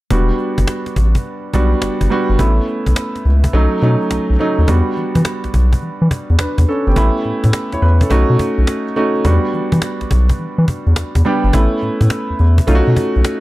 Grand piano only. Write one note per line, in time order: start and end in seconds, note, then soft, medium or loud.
0.11 0.98 G3 medium
0.11 0.98 B3 medium
0.11 0.98 D4 medium
0.11 0.99 F#4 medium
1.54 2.02 G3 medium
1.54 2.02 B3 medium
1.54 2.02 D4 medium
1.54 2.02 F#4 medium
2.10 2.34 G3 medium
2.10 2.35 B3 medium
2.10 2.35 D4 medium
2.10 2.35 F#4 loud
2.39 3.26 A3 medium
2.39 3.27 B3 medium
2.39 3.27 C#4 medium
2.39 3.27 E4 medium
3.53 3.78 F#3 medium
3.53 3.78 A3 medium
3.53 3.79 C#4 medium
3.53 3.79 D#4 loud
3.82 4.30 F#3 medium
3.82 4.30 A3 medium
3.82 4.31 C#4 medium
3.82 4.31 D#4 medium
4.39 4.63 F#3 medium
4.39 4.63 A3 medium
4.39 4.64 C#4 medium
4.39 4.64 D#4 loud
4.68 5.55 G3 medium
4.68 5.56 B3 medium
4.68 5.56 D4 medium
4.68 5.56 F#4 medium
6.40 6.67 D4 medium
6.40 6.67 B4 medium
6.69 6.87 C#4 medium
6.69 6.86 A4 medium
6.87 6.95 B3 medium
6.87 7.14 G4 medium
6.96 7.84 A3 medium
6.96 7.84 B3 medium
6.96 7.54 C#4 medium
6.96 7.54 E4 medium
7.73 7.82 E4 medium
7.73 7.82 C#5 medium
7.82 8.00 B4 medium
8.01 8.09 C#4 medium
8.01 8.28 A4 medium
8.10 8.83 A3 medium
8.10 8.83 C#4 medium
8.10 8.83 D#4 medium
8.10 8.83 F#4 loud
8.96 9.20 A3 medium
8.96 9.20 C#4 medium
8.96 9.21 D#4 medium
8.96 9.21 F#4 medium
9.25 10.12 G3 medium
9.25 10.13 B3 medium
9.25 10.13 D4 medium
9.25 10.13 F#4 medium
11.25 11.49 G3 medium
11.25 11.49 B3 medium
11.25 11.49 D4 medium
11.25 11.50 G4 medium
11.53 12.41 A3 medium
11.53 12.41 B3 medium
11.53 12.41 C#4 medium
11.53 12.41 E4 medium
12.67 13.40 A3 medium
12.67 13.40 C#4 medium
12.67 13.40 D#4 medium
12.67 12.77 F4 medium
12.75 13.40 F#4 loud